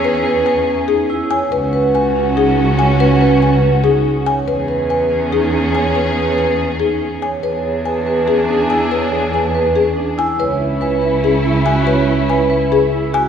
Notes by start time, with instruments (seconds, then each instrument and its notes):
Already playing: cello E2, string section C#4 G#4, french horn G#4, vibraphone C#5, marimba G#5
0.05 marimba B4
0.25 vibraphone B4
0.46 vibraphone B4, marimba G#5
0.68 vibraphone C#4
0.88 vibraphone D#4, marimba G#4
1.10 vibraphone E4
1.31 vibraphone C#5, marimba G#5
1.52 cello C#2, string section C#4 F#4, french horn F#4, marimba B4
1.73 vibraphone B4
1.94 vibraphone B4, marimba G#5
2.15 vibraphone C#4
2.36 vibraphone D#4, marimba G#4
2.79 vibraphone C#5, marimba G#5
3.00 marimba B4
3.21 vibraphone B4
3.42 vibraphone B4, marimba G#5
3.63 vibraphone C#4
3.84 vibraphone D#4, marimba G#4
4.26 vibraphone C#5, marimba G#5
4.47 cello E2, string section C#4 G#4, french horn G#4, marimba B4
4.68 vibraphone B4
4.90 vibraphone B4, marimba G#5
5.11 vibraphone C#4
5.32 vibraphone D#4, marimba G#4
5.74 vibraphone C#5, marimba G#5
5.95 marimba B4
6.16 vibraphone B4
6.38 vibraphone B4, marimba G#5
6.59 vibraphone C#4
6.80 vibraphone D#4, marimba G#4
7.22 vibraphone C#5, marimba G#5
7.43 cello E2, string section D4 G#4, french horn G#4, marimba B4, vibraphone C#5
7.64 french horn G#4
7.85 french horn G#4, vibraphone B4, marimba G#5
8.06 french horn G#4, vibraphone B4
8.27 vibraphone C#4, french horn G#4, marimba G#4
8.48 vibraphone D4, french horn G#4
8.69 vibraphone E4, french horn G#4, marimba G#5
8.91 french horn G#4, marimba B4, vibraphone C#5
9.12 french horn G#4
9.33 french horn G#4, vibraphone B4, marimba G#5
9.54 french horn G#4, vibraphone B4
9.75 vibraphone C#4, french horn G#4, marimba G#4
9.97 vibraphone D4, french horn G#4
10.18 vibraphone E4, marimba G#5
10.39 cello C#2, string section C#4 E4, french horn E4, marimba B4, vibraphone C#5
10.60 french horn E4
10.81 french horn E4, vibraphone B4, marimba G#5
11.02 french horn E4, vibraphone B4
11.23 vibraphone C#4, french horn E4, marimba G#4
11.44 vibraphone E4, french horn E4
11.65 french horn E4, vibraphone F#4, marimba G#5
11.86 french horn E4, marimba B4, vibraphone C#5
12.08 french horn E4
12.29 french horn E4, vibraphone B4, marimba G#5
12.50 french horn E4, vibraphone B4
12.71 vibraphone C#4, french horn E4, marimba G#4
12.92 french horn E4, vibraphone E4
13.13 vibraphone F#4, marimba G#5